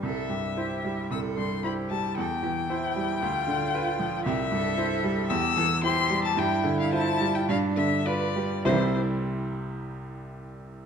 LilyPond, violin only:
\new Staff \with { instrumentName = "Violin" } { \time 4/4 \key c \major \tempo 4 = 111 e''2 e'''8 c'''8 b''8 a''8 | g''1 | e''2 e'''4 c'''8. a''16 | g''8. f''16 a''8. g''16 f''8 e''8 d''4 |
c''8 r2. r8 | }